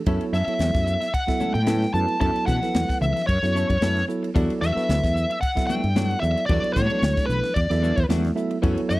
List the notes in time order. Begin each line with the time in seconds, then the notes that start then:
0.06 F#2 F#3 B3 C#4 E4 A4 C#5, kick, ride, muted conga
0.21 ride
0.33 F#2 C#4 E4 A4 E5, snare, hi-hat pedal, muted conga
0.47 F#3 B3 E4 A4 C#5, muted fretless electric bass stroke, ride
0.59 E2, muted clean electric guitar stroke, snare, ride, high conga
0.74 F#2, muted clean electric guitar stroke, kick, snare, ride
0.86 muted clean electric guitar stroke, hi-hat pedal
1.00 muted clean electric guitar stroke, snare, ride
1.14 F#5, kick, ride
1.27 F#3 B3 E4 A4 E5, muted clean electric guitar stroke, kick, snare, ride
1.40 C#4 E4 A4, hi-hat pedal, muted conga, high conga
1.54 A2 G5, muted clean electric guitar stroke, ride
1.66 F#3 B3 C#4 E4 A4 B4, snare, ride, muted conga, high conga
1.82 snare, ride
1.94 F#2 F#3 B3 E4 A4 B4 A5, muted clean electric guitar stroke, hi-hat pedal
2.08 muted clean electric guitar stroke, ride
2.20 F#2 F#3 B3 C#4 E4 A4 C#5 A5, kick, ride
2.35 muted fretless electric bass stroke, ride
2.46 B2 C#4 E4 A4 F#5, kick, snare, hi-hat pedal, muted conga, low conga
2.61 F#3 B3 E4 A4 B4, snare, ride
2.74 E2, muted clean electric guitar stroke, snare, ride, high conga
2.89 muted fretless electric bass stroke, muted clean electric guitar stroke, kick, snare, ride
3.01 C#2 E5, muted clean electric guitar stroke, hi-hat pedal, low conga
3.16 muted clean electric guitar stroke, snare, ride
3.27 F#2 C#5, kick, ride
3.42 F#2 F#3 B3 E4 A4 C#5, muted clean electric guitar stroke, snare, ride
3.54 C#4 E4 A4, hi-hat pedal, muted conga
3.69 F#2, muted clean electric guitar stroke, kick, ride
3.81 F#2 F#3 B3 C#4 E4 A4 B4, snare, ride, muted conga, high conga
3.97 snare, ride
4.08 F#3 B3 E4 A4 C#5, muted clean electric guitar stroke, hi-hat pedal
4.23 muted clean electric guitar stroke, ride
4.34 E2 F#3 G3 B3 D4 E4 F#4 A4 D5, kick, ride, muted conga
4.50 ride
4.61 E2 G3 B3 D4 F#4 E5, snare, hi-hat pedal
4.75 F#3 B3 D4 E4 F#4 A4 B4, muted fretless electric bass stroke, snare, ride
4.89 D2, muted clean electric guitar stroke, snare, ride, high conga
5.03 E2, muted clean electric guitar stroke, kick, snare, ride
5.15 muted clean electric guitar stroke, hi-hat pedal
5.30 muted clean electric guitar stroke, ride
5.41 F#5, kick, ride
5.55 F#3 B3 E4 A4 E5, muted clean electric guitar stroke, kick, snare, ride
5.67 G3 B3 D4 F#4 G5, hi-hat pedal, muted conga, high conga
5.83 G2, muted clean electric guitar stroke, ride
5.95 F#3 G3 B3 D4 E4 F#4 A4 C#5, snare, ride, muted conga, high conga
6.08 F#5, ride
6.20 E2 F#3 B3 E4 A4 D5 E5, muted clean electric guitar stroke, hi-hat pedal
6.36 muted clean electric guitar stroke, ride
6.46 E2 F#3 G3 B3 D4 E4 F#4 D5, kick, ride, muted conga
6.50 A4 D5
6.64 muted fretless electric bass stroke, ride
6.73 A2 G3 B3 D4 F#4 C#5, kick, snare, hi-hat pedal, muted conga, high conga, low conga
6.90 F#3 B3 D4 E4 F#4 A4, ride
7.02 D2, muted clean electric guitar stroke, snare, ride, high conga
7.17 muted clean electric guitar stroke, kick, snare, ride
7.26 B1 B4, muted clean electric guitar stroke, hi-hat pedal, low conga
7.43 muted clean electric guitar stroke, snare, ride
7.54 E2 D5, kick, ride
7.70 E2 F#3 B3 E4 A4 E5, muted clean electric guitar stroke, snare, ride
7.82 G3 B3 D4 F#4, hi-hat pedal, muted conga
7.97 E2, muted clean electric guitar stroke, kick, ride
8.09 E2 F#3 G3 B3 D4 E4 F#4 A4 E5, snare, ride, muted conga, high conga
8.25 snare, ride
8.35 F#3 B3 E4 A4 E5, muted clean electric guitar stroke, hi-hat pedal
8.51 muted clean electric guitar stroke, ride
8.62 F#2 E3 F#3 A3 B3 C#4 E4 F#4 A4 C#5, kick, ride, muted conga
8.78 ride
8.89 F#2 E3 A3 C#4 F#4 E5, snare, hi-hat pedal, muted conga